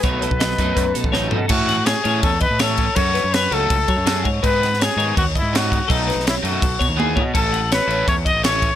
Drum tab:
CC |----------------|x-x-x-x-x-x-x-x-|x-x-x-x-x-x-x-x-|x-x-x-x-x-x-x-x-|
HH |x-x-x-x-x-x-----|----------------|----------------|----------------|
SD |----oo------o---|--o-o-------o---|--o-o-------o---|--ooo-------o---|
T1 |----------------|----------------|----------------|----------------|
FT |--------------o-|----------------|----------------|----------------|
BD |o--o--o-o--o----|o-------o-o---o-|o-------o-o---o-|o-------o-o---o-|

CC |x-x-x-x-x-x-----|x-x-x-x-x-x-x-x-|
HH |----------------|----------------|
SD |--ooo-----------|----o-------o---|
T1 |------------o---|----------------|
FT |----------------|----------------|
BD |o-------o-o---o-|o-------o-o---o-|